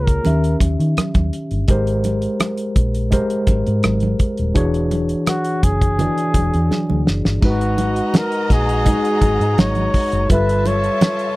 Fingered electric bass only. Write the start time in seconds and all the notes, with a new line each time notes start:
Already playing: C#2
0.26 D#2
0.61 D#2
0.79 D#3
0.98 muted fingered electric bass stroke
1.16 D#2
1.51 G1
1.69 G#1
2.76 A#1
3.47 G#1
3.68 G#2
3.85 G#1
4.39 D#1
4.56 E1
5.63 F#1
6.35 E1
6.54 E2
6.90 D2
7.09 F#1
7.26 G1
7.43 G#1
8.51 A#1
9.22 G#1
9.41 G#2
9.58 G#1
10.13 F#1
10.30 G1